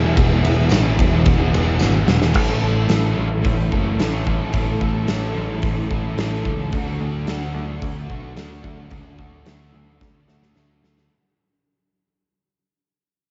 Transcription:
Already playing: E1 E2 B3 E4 G#4 E5 B5 E6
0.02 B2 E3 G#3 B3 G#4
0.16 E1 E2 B2 E3 G#3 B3 G#4, kick, ride
0.28 B2 E3
0.42 E1 E2 B2 E3 G#3 B3, ride
0.47 G#4
0.69 A1 E2 B2 E3 G#3 B3, snare, ride, tambourine
0.74 G#4
0.97 E1 E2 B2 E3, muted overdriven electric guitar stroke, kick, ride
1.10 B2 E3 B3 G#4
1.15 E3 G#3
1.26 E1, kick, ride
1.38 B2 E3 B3 G#4
1.42 E3 G#3
1.51 E1 E2 B2 E3 G#3, ride
1.55 B3 G#4
1.64 B2 E3
1.79 G#1 E2 B2 E3 G#3 B3 G#4, snare, tambourine
1.93 E3 G#3 B3 G#4
2.05 E1 E2 B2 E3 G#3 B3, snare
2.10 G#4
2.18 B2 E3 G#4, snare
2.22 E3 G#3 B3
2.34 A1 A2 E3 A3 C#4 A4 E5 B5 C#6, kick, crash
2.38 A4
2.62 A1 A3 C#4 A4
2.87 A1 A2 E3, snare, open hi-hat
2.91 A3 C#4 A4
3.14 A1 E3 A3
3.42 A1 A2 E3 A3, kick, open hi-hat
3.72 F#1 A3 C#4 A4, kick
3.97 A1 A2 E3, snare, open hi-hat
4.01 A3 C#4 A4
4.24 A1 E3 A3 A4, kick
4.29 A3 C#4
4.52 A1 A2 E3 A3 A5, kick, open hi-hat
4.57 C#4 A4
4.81 A1 C#4 A4, kick
4.85 A3
5.06 A1 A2 E3 A3 C#4, snare, open hi-hat
5.11 A4
5.34 A1 E3 A3
5.62 A1 A2 E3 A3, kick, open hi-hat
5.91 A1 A3 C#4 A4, kick
6.17 A1 A2 E3 A3 C#4 A4, snare, open hi-hat
6.45 C#2 E3 A3 C#4 A4, kick
6.72 D2 D3 A3 D4 D5 F#5 C#6, kick, open hi-hat
6.77 F#4
7.01 D2 A3 D4 F#4
7.27 D2 D3 A3 D4 F#4, snare, open hi-hat
7.53 D2 A3 D4
7.80 D2 D3 A3 D4, kick, open hi-hat
8.10 B1 A3 D4 F#4, kick
8.36 D2 D3 A3 D4 F#4, snare, open hi-hat
8.64 D2 A3 D4 F#4, kick
8.91 D2 D3 A3 D4, kick, open hi-hat
8.95 F#4
9.18 D2 D4 F#4, kick
9.23 A3
9.46 D2 D3 A3 D4 F#4, snare, open hi-hat
9.72 D2 A3 D4
9.99 D2 D3 A3 D4, kick, snare
10.28 D2 D4 F#4, snare
10.32 A3
10.42 snare
10.56 D2 D3 A3 D4 F#4, snare
10.83 D2 A3 D4 F#4, snare
10.98 snare

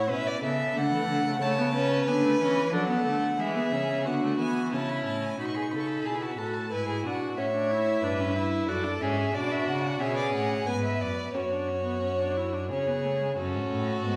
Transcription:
Already playing: A2 C#5
0.09 B2 C#4 B4 E5
0.27 D5
0.42 C#3 B3 A4 E5
0.75 D3 A3 F#5
0.92 E3
1.09 D3
1.25 C#3
1.41 C#3 A3 C#5 A5
1.58 B3
1.74 C#4 B4
2.07 D3 B3 G#5
2.24 A3
2.40 E3 C#4
2.73 F#3 D4 A4 F#5
2.89 B3
3.06 D3 A3
3.39 E3 G#3 G#4 E5
3.56 B3
3.72 C#3 C#4
4.05 D3 B3 F#4 F#5
4.23 A3
4.39 E3 B3 G#5
4.72 C#3 C#4 E4 A5
4.90 B5
5.06 A2 A5
5.24 G#5
5.39 B2 D#4 F#4 B5
5.47 C#6
5.55 G#4 B5
5.63 C#6
5.71 C#3 A4 B5
5.80 C#6
5.87 B5
6.05 B2 E4 G#4 A5
6.14 B5
6.22 F#4 A5
6.31 B5
6.38 A2 F#4 A4 A5
6.46 B5
6.54 A5
6.71 G#2 E4 B4 G#5
6.88 G#4
7.04 B2 D4 F#4 F#5
7.37 A2 C#4 C#5 E5
7.55 D4
7.71 E4
8.03 G2 D4 B4
8.20 C#4
8.36 E4
8.68 F#2 F#4 A4 D5
8.84 D4
9.01 G#2 C#4 G#4 E5
9.34 B2 D4 F#4 D5
9.51 E5
9.67 C#3 F#5
10.00 B2 C#4 G#4 E5
10.16 D5
10.34 A2 F#5
10.67 G#2 B3 B4 G#5
10.84 E5
11.01 F#2 D5
11.34 F#2 C#4 F#4 C#5
11.51 D4
11.68 C#4
11.85 B3
12.02 C#4
12.19 D4
12.36 E4
12.53 D4
12.70 C#3 C#4 G#4 C#5
12.87 B3
13.04 A3
13.21 G#3
13.38 F#2 C#4 F#4 A4
13.54 G#2
13.71 A2
14.04 G#2 B3

